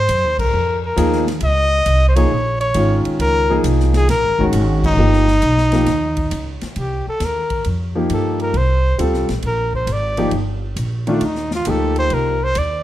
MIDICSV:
0, 0, Header, 1, 6, 480
1, 0, Start_track
1, 0, Tempo, 445434
1, 1519, Time_signature, 4, 2, 24, 8
1, 13828, End_track
2, 0, Start_track
2, 0, Title_t, "Trumpet"
2, 0, Program_c, 0, 56
2, 0, Note_on_c, 0, 72, 101
2, 375, Note_off_c, 0, 72, 0
2, 424, Note_on_c, 0, 70, 83
2, 862, Note_off_c, 0, 70, 0
2, 919, Note_on_c, 0, 70, 70
2, 1350, Note_off_c, 0, 70, 0
2, 1552, Note_on_c, 0, 75, 100
2, 2197, Note_off_c, 0, 75, 0
2, 2247, Note_on_c, 0, 72, 69
2, 2318, Note_on_c, 0, 73, 87
2, 2334, Note_off_c, 0, 72, 0
2, 2799, Note_off_c, 0, 73, 0
2, 2806, Note_on_c, 0, 73, 80
2, 3253, Note_off_c, 0, 73, 0
2, 3459, Note_on_c, 0, 70, 105
2, 3897, Note_off_c, 0, 70, 0
2, 4270, Note_on_c, 0, 68, 89
2, 4403, Note_off_c, 0, 68, 0
2, 4417, Note_on_c, 0, 70, 95
2, 4857, Note_off_c, 0, 70, 0
2, 5231, Note_on_c, 0, 63, 108
2, 7098, Note_off_c, 0, 63, 0
2, 7309, Note_on_c, 0, 67, 66
2, 7601, Note_off_c, 0, 67, 0
2, 7641, Note_on_c, 0, 69, 80
2, 7809, Note_on_c, 0, 70, 74
2, 7826, Note_off_c, 0, 69, 0
2, 8267, Note_off_c, 0, 70, 0
2, 8768, Note_on_c, 0, 69, 66
2, 9052, Note_off_c, 0, 69, 0
2, 9070, Note_on_c, 0, 70, 78
2, 9236, Note_on_c, 0, 72, 84
2, 9252, Note_off_c, 0, 70, 0
2, 9701, Note_off_c, 0, 72, 0
2, 10200, Note_on_c, 0, 70, 78
2, 10488, Note_off_c, 0, 70, 0
2, 10507, Note_on_c, 0, 72, 72
2, 10694, Note_on_c, 0, 74, 77
2, 10710, Note_off_c, 0, 72, 0
2, 11150, Note_off_c, 0, 74, 0
2, 11977, Note_on_c, 0, 62, 64
2, 12132, Note_on_c, 0, 63, 66
2, 12148, Note_off_c, 0, 62, 0
2, 12434, Note_off_c, 0, 63, 0
2, 12446, Note_on_c, 0, 65, 84
2, 12604, Note_on_c, 0, 69, 74
2, 12620, Note_off_c, 0, 65, 0
2, 12910, Note_off_c, 0, 69, 0
2, 12915, Note_on_c, 0, 72, 97
2, 13078, Note_on_c, 0, 70, 79
2, 13094, Note_off_c, 0, 72, 0
2, 13400, Note_on_c, 0, 72, 93
2, 13416, Note_off_c, 0, 70, 0
2, 13560, Note_on_c, 0, 74, 79
2, 13577, Note_off_c, 0, 72, 0
2, 13828, Note_off_c, 0, 74, 0
2, 13828, End_track
3, 0, Start_track
3, 0, Title_t, "Grand piano"
3, 0, Program_c, 1, 0
3, 1038, Note_on_c, 1, 53, 72
3, 1047, Note_on_c, 1, 58, 60
3, 1053, Note_on_c, 1, 63, 60
3, 1054, Note_on_c, 1, 68, 73
3, 1333, Note_off_c, 1, 53, 0
3, 1337, Note_off_c, 1, 58, 0
3, 1340, Note_off_c, 1, 63, 0
3, 1341, Note_off_c, 1, 68, 0
3, 2324, Note_on_c, 1, 53, 65
3, 2332, Note_on_c, 1, 58, 63
3, 2340, Note_on_c, 1, 63, 59
3, 2347, Note_on_c, 1, 68, 71
3, 2464, Note_off_c, 1, 53, 0
3, 2467, Note_off_c, 1, 58, 0
3, 2472, Note_off_c, 1, 63, 0
3, 2475, Note_off_c, 1, 68, 0
3, 2964, Note_on_c, 1, 51, 62
3, 2969, Note_on_c, 1, 56, 49
3, 2978, Note_on_c, 1, 61, 58
3, 2984, Note_on_c, 1, 65, 68
3, 3704, Note_off_c, 1, 51, 0
3, 3707, Note_off_c, 1, 56, 0
3, 3711, Note_off_c, 1, 61, 0
3, 3714, Note_off_c, 1, 65, 0
3, 3764, Note_on_c, 1, 53, 63
3, 3775, Note_on_c, 1, 58, 59
3, 3776, Note_on_c, 1, 63, 62
3, 3782, Note_on_c, 1, 68, 69
3, 4369, Note_off_c, 1, 53, 0
3, 4375, Note_off_c, 1, 58, 0
3, 4375, Note_off_c, 1, 63, 0
3, 4378, Note_off_c, 1, 68, 0
3, 4733, Note_on_c, 1, 51, 65
3, 4739, Note_on_c, 1, 56, 66
3, 4740, Note_on_c, 1, 61, 63
3, 4754, Note_on_c, 1, 66, 76
3, 5334, Note_off_c, 1, 51, 0
3, 5337, Note_off_c, 1, 56, 0
3, 5338, Note_off_c, 1, 61, 0
3, 5344, Note_off_c, 1, 66, 0
3, 5366, Note_on_c, 1, 53, 60
3, 5374, Note_on_c, 1, 58, 53
3, 5380, Note_on_c, 1, 63, 57
3, 5381, Note_on_c, 1, 67, 66
3, 5658, Note_off_c, 1, 53, 0
3, 5662, Note_off_c, 1, 58, 0
3, 5665, Note_off_c, 1, 63, 0
3, 5666, Note_off_c, 1, 67, 0
3, 6171, Note_on_c, 1, 53, 69
3, 6176, Note_on_c, 1, 58, 60
3, 6182, Note_on_c, 1, 67, 70
3, 6186, Note_on_c, 1, 63, 58
3, 6308, Note_off_c, 1, 53, 0
3, 6311, Note_off_c, 1, 58, 0
3, 6314, Note_off_c, 1, 67, 0
3, 6316, Note_off_c, 1, 63, 0
3, 8570, Note_on_c, 1, 53, 63
3, 8577, Note_on_c, 1, 58, 58
3, 8579, Note_on_c, 1, 63, 53
3, 8590, Note_on_c, 1, 67, 67
3, 9174, Note_off_c, 1, 53, 0
3, 9177, Note_off_c, 1, 58, 0
3, 9179, Note_off_c, 1, 63, 0
3, 9184, Note_off_c, 1, 67, 0
3, 9681, Note_on_c, 1, 55, 60
3, 9691, Note_on_c, 1, 60, 53
3, 9697, Note_on_c, 1, 65, 57
3, 9697, Note_on_c, 1, 69, 69
3, 9977, Note_off_c, 1, 55, 0
3, 9982, Note_off_c, 1, 60, 0
3, 9985, Note_off_c, 1, 65, 0
3, 9985, Note_off_c, 1, 69, 0
3, 10967, Note_on_c, 1, 58, 63
3, 10968, Note_on_c, 1, 53, 76
3, 10977, Note_on_c, 1, 63, 65
3, 10979, Note_on_c, 1, 67, 79
3, 11108, Note_off_c, 1, 53, 0
3, 11108, Note_off_c, 1, 58, 0
3, 11113, Note_off_c, 1, 63, 0
3, 11114, Note_off_c, 1, 67, 0
3, 11928, Note_on_c, 1, 51, 72
3, 11933, Note_on_c, 1, 57, 65
3, 11939, Note_on_c, 1, 62, 58
3, 11951, Note_on_c, 1, 65, 73
3, 12068, Note_off_c, 1, 51, 0
3, 12070, Note_off_c, 1, 57, 0
3, 12074, Note_off_c, 1, 62, 0
3, 12079, Note_off_c, 1, 65, 0
3, 12565, Note_on_c, 1, 53, 54
3, 12574, Note_on_c, 1, 58, 50
3, 12579, Note_on_c, 1, 67, 64
3, 12580, Note_on_c, 1, 63, 53
3, 13305, Note_off_c, 1, 53, 0
3, 13310, Note_off_c, 1, 58, 0
3, 13312, Note_off_c, 1, 63, 0
3, 13312, Note_off_c, 1, 67, 0
3, 13828, End_track
4, 0, Start_track
4, 0, Title_t, "Upright bass"
4, 0, Program_c, 2, 32
4, 96, Note_on_c, 2, 42, 88
4, 259, Note_off_c, 2, 42, 0
4, 259, Note_on_c, 2, 39, 52
4, 409, Note_off_c, 2, 39, 0
4, 414, Note_on_c, 2, 37, 60
4, 556, Note_off_c, 2, 37, 0
4, 577, Note_on_c, 2, 41, 80
4, 1034, Note_off_c, 2, 41, 0
4, 1045, Note_on_c, 2, 39, 85
4, 1508, Note_off_c, 2, 39, 0
4, 1524, Note_on_c, 2, 37, 83
4, 1988, Note_off_c, 2, 37, 0
4, 2005, Note_on_c, 2, 36, 91
4, 2468, Note_off_c, 2, 36, 0
4, 2494, Note_on_c, 2, 34, 82
4, 2953, Note_off_c, 2, 34, 0
4, 2962, Note_on_c, 2, 32, 90
4, 3265, Note_off_c, 2, 32, 0
4, 3437, Note_on_c, 2, 37, 84
4, 3905, Note_off_c, 2, 37, 0
4, 3919, Note_on_c, 2, 36, 90
4, 4386, Note_off_c, 2, 36, 0
4, 4406, Note_on_c, 2, 34, 80
4, 4561, Note_off_c, 2, 34, 0
4, 4561, Note_on_c, 2, 32, 55
4, 4716, Note_off_c, 2, 32, 0
4, 4723, Note_on_c, 2, 30, 65
4, 4871, Note_off_c, 2, 30, 0
4, 4880, Note_on_c, 2, 32, 91
4, 5347, Note_off_c, 2, 32, 0
4, 5356, Note_on_c, 2, 31, 87
4, 5825, Note_off_c, 2, 31, 0
4, 5848, Note_on_c, 2, 35, 85
4, 6312, Note_off_c, 2, 35, 0
4, 6323, Note_on_c, 2, 39, 86
4, 6789, Note_off_c, 2, 39, 0
4, 6809, Note_on_c, 2, 37, 82
4, 7110, Note_off_c, 2, 37, 0
4, 7289, Note_on_c, 2, 36, 81
4, 7591, Note_off_c, 2, 36, 0
4, 7761, Note_on_c, 2, 39, 78
4, 8229, Note_off_c, 2, 39, 0
4, 8253, Note_on_c, 2, 41, 77
4, 8715, Note_off_c, 2, 41, 0
4, 8729, Note_on_c, 2, 43, 76
4, 9193, Note_off_c, 2, 43, 0
4, 9199, Note_on_c, 2, 36, 83
4, 9668, Note_off_c, 2, 36, 0
4, 9686, Note_on_c, 2, 38, 80
4, 9840, Note_off_c, 2, 38, 0
4, 9840, Note_on_c, 2, 36, 52
4, 10003, Note_off_c, 2, 36, 0
4, 10015, Note_on_c, 2, 34, 60
4, 10159, Note_off_c, 2, 34, 0
4, 10167, Note_on_c, 2, 34, 81
4, 10624, Note_off_c, 2, 34, 0
4, 10630, Note_on_c, 2, 32, 87
4, 11103, Note_off_c, 2, 32, 0
4, 11121, Note_on_c, 2, 31, 78
4, 11588, Note_off_c, 2, 31, 0
4, 11598, Note_on_c, 2, 34, 79
4, 12067, Note_off_c, 2, 34, 0
4, 12083, Note_on_c, 2, 39, 75
4, 12549, Note_off_c, 2, 39, 0
4, 12573, Note_on_c, 2, 38, 91
4, 13034, Note_off_c, 2, 38, 0
4, 13048, Note_on_c, 2, 36, 81
4, 13511, Note_off_c, 2, 36, 0
4, 13532, Note_on_c, 2, 39, 81
4, 13828, Note_off_c, 2, 39, 0
4, 13828, End_track
5, 0, Start_track
5, 0, Title_t, "Muted upright bass strokes"
5, 3298, Note_on_c, 9, 29, 39
5, 3405, Note_off_c, 9, 29, 0
5, 7139, Note_on_c, 9, 29, 39
5, 7247, Note_off_c, 9, 29, 0
5, 7622, Note_on_c, 9, 29, 34
5, 7730, Note_off_c, 9, 29, 0
5, 13828, End_track
6, 0, Start_track
6, 0, Title_t, "Drums"
6, 93, Note_on_c, 9, 44, 51
6, 93, Note_on_c, 9, 51, 64
6, 201, Note_off_c, 9, 44, 0
6, 201, Note_off_c, 9, 51, 0
6, 417, Note_on_c, 9, 36, 79
6, 423, Note_on_c, 9, 49, 68
6, 525, Note_off_c, 9, 36, 0
6, 531, Note_off_c, 9, 49, 0
6, 1050, Note_on_c, 9, 44, 59
6, 1050, Note_on_c, 9, 51, 73
6, 1158, Note_off_c, 9, 44, 0
6, 1158, Note_off_c, 9, 51, 0
6, 1213, Note_on_c, 9, 38, 28
6, 1321, Note_off_c, 9, 38, 0
6, 1367, Note_on_c, 9, 38, 41
6, 1379, Note_on_c, 9, 51, 42
6, 1475, Note_off_c, 9, 38, 0
6, 1487, Note_off_c, 9, 51, 0
6, 1514, Note_on_c, 9, 51, 59
6, 1622, Note_off_c, 9, 51, 0
6, 2001, Note_on_c, 9, 44, 52
6, 2001, Note_on_c, 9, 51, 65
6, 2109, Note_off_c, 9, 44, 0
6, 2109, Note_off_c, 9, 51, 0
6, 2332, Note_on_c, 9, 51, 64
6, 2439, Note_off_c, 9, 51, 0
6, 2810, Note_on_c, 9, 51, 44
6, 2918, Note_off_c, 9, 51, 0
6, 2955, Note_on_c, 9, 44, 56
6, 2955, Note_on_c, 9, 51, 64
6, 3063, Note_off_c, 9, 44, 0
6, 3063, Note_off_c, 9, 51, 0
6, 3288, Note_on_c, 9, 51, 45
6, 3396, Note_off_c, 9, 51, 0
6, 3444, Note_on_c, 9, 51, 62
6, 3552, Note_off_c, 9, 51, 0
6, 3922, Note_on_c, 9, 44, 55
6, 3922, Note_on_c, 9, 51, 65
6, 4030, Note_off_c, 9, 44, 0
6, 4030, Note_off_c, 9, 51, 0
6, 4093, Note_on_c, 9, 38, 30
6, 4200, Note_off_c, 9, 38, 0
6, 4239, Note_on_c, 9, 38, 42
6, 4248, Note_on_c, 9, 51, 41
6, 4347, Note_off_c, 9, 38, 0
6, 4356, Note_off_c, 9, 51, 0
6, 4404, Note_on_c, 9, 51, 64
6, 4409, Note_on_c, 9, 38, 38
6, 4512, Note_off_c, 9, 51, 0
6, 4517, Note_off_c, 9, 38, 0
6, 4727, Note_on_c, 9, 36, 53
6, 4835, Note_off_c, 9, 36, 0
6, 4877, Note_on_c, 9, 44, 61
6, 4877, Note_on_c, 9, 51, 75
6, 4985, Note_off_c, 9, 44, 0
6, 4985, Note_off_c, 9, 51, 0
6, 5211, Note_on_c, 9, 36, 78
6, 5216, Note_on_c, 9, 49, 77
6, 5319, Note_off_c, 9, 36, 0
6, 5324, Note_off_c, 9, 49, 0
6, 5526, Note_on_c, 9, 38, 29
6, 5634, Note_off_c, 9, 38, 0
6, 5687, Note_on_c, 9, 38, 42
6, 5794, Note_off_c, 9, 38, 0
6, 5838, Note_on_c, 9, 44, 60
6, 5838, Note_on_c, 9, 51, 60
6, 5946, Note_off_c, 9, 44, 0
6, 5946, Note_off_c, 9, 51, 0
6, 6009, Note_on_c, 9, 38, 28
6, 6116, Note_off_c, 9, 38, 0
6, 6161, Note_on_c, 9, 51, 44
6, 6169, Note_on_c, 9, 38, 44
6, 6268, Note_off_c, 9, 51, 0
6, 6277, Note_off_c, 9, 38, 0
6, 6319, Note_on_c, 9, 51, 59
6, 6324, Note_on_c, 9, 38, 39
6, 6426, Note_off_c, 9, 51, 0
6, 6432, Note_off_c, 9, 38, 0
6, 6645, Note_on_c, 9, 51, 47
6, 6651, Note_on_c, 9, 36, 55
6, 6753, Note_off_c, 9, 51, 0
6, 6759, Note_off_c, 9, 36, 0
6, 6801, Note_on_c, 9, 44, 55
6, 6801, Note_on_c, 9, 51, 62
6, 6909, Note_off_c, 9, 44, 0
6, 6909, Note_off_c, 9, 51, 0
6, 7127, Note_on_c, 9, 51, 43
6, 7132, Note_on_c, 9, 38, 36
6, 7235, Note_off_c, 9, 51, 0
6, 7240, Note_off_c, 9, 38, 0
6, 7282, Note_on_c, 9, 51, 50
6, 7390, Note_off_c, 9, 51, 0
6, 7761, Note_on_c, 9, 44, 50
6, 7761, Note_on_c, 9, 51, 56
6, 7767, Note_on_c, 9, 38, 34
6, 7869, Note_off_c, 9, 44, 0
6, 7869, Note_off_c, 9, 51, 0
6, 7874, Note_off_c, 9, 38, 0
6, 8082, Note_on_c, 9, 51, 43
6, 8088, Note_on_c, 9, 36, 44
6, 8190, Note_off_c, 9, 51, 0
6, 8196, Note_off_c, 9, 36, 0
6, 8238, Note_on_c, 9, 51, 54
6, 8346, Note_off_c, 9, 51, 0
6, 8725, Note_on_c, 9, 44, 45
6, 8725, Note_on_c, 9, 51, 57
6, 8832, Note_off_c, 9, 44, 0
6, 8832, Note_off_c, 9, 51, 0
6, 9048, Note_on_c, 9, 51, 38
6, 9155, Note_off_c, 9, 51, 0
6, 9202, Note_on_c, 9, 51, 48
6, 9310, Note_off_c, 9, 51, 0
6, 9688, Note_on_c, 9, 44, 48
6, 9688, Note_on_c, 9, 51, 65
6, 9795, Note_off_c, 9, 44, 0
6, 9795, Note_off_c, 9, 51, 0
6, 9846, Note_on_c, 9, 38, 26
6, 9954, Note_off_c, 9, 38, 0
6, 10007, Note_on_c, 9, 51, 38
6, 10011, Note_on_c, 9, 38, 39
6, 10115, Note_off_c, 9, 51, 0
6, 10119, Note_off_c, 9, 38, 0
6, 10156, Note_on_c, 9, 51, 57
6, 10264, Note_off_c, 9, 51, 0
6, 10489, Note_on_c, 9, 36, 46
6, 10597, Note_off_c, 9, 36, 0
6, 10638, Note_on_c, 9, 44, 49
6, 10638, Note_on_c, 9, 51, 60
6, 10745, Note_off_c, 9, 44, 0
6, 10745, Note_off_c, 9, 51, 0
6, 10961, Note_on_c, 9, 51, 43
6, 11069, Note_off_c, 9, 51, 0
6, 11112, Note_on_c, 9, 51, 55
6, 11220, Note_off_c, 9, 51, 0
6, 11600, Note_on_c, 9, 44, 47
6, 11600, Note_on_c, 9, 51, 64
6, 11708, Note_off_c, 9, 44, 0
6, 11708, Note_off_c, 9, 51, 0
6, 11928, Note_on_c, 9, 51, 38
6, 12036, Note_off_c, 9, 51, 0
6, 12077, Note_on_c, 9, 51, 59
6, 12185, Note_off_c, 9, 51, 0
6, 12235, Note_on_c, 9, 38, 27
6, 12342, Note_off_c, 9, 38, 0
6, 12403, Note_on_c, 9, 38, 45
6, 12511, Note_off_c, 9, 38, 0
6, 12554, Note_on_c, 9, 44, 54
6, 12554, Note_on_c, 9, 51, 69
6, 12661, Note_off_c, 9, 44, 0
6, 12661, Note_off_c, 9, 51, 0
6, 12886, Note_on_c, 9, 51, 40
6, 12994, Note_off_c, 9, 51, 0
6, 13040, Note_on_c, 9, 51, 58
6, 13148, Note_off_c, 9, 51, 0
6, 13525, Note_on_c, 9, 44, 59
6, 13525, Note_on_c, 9, 51, 61
6, 13633, Note_off_c, 9, 44, 0
6, 13633, Note_off_c, 9, 51, 0
6, 13828, End_track
0, 0, End_of_file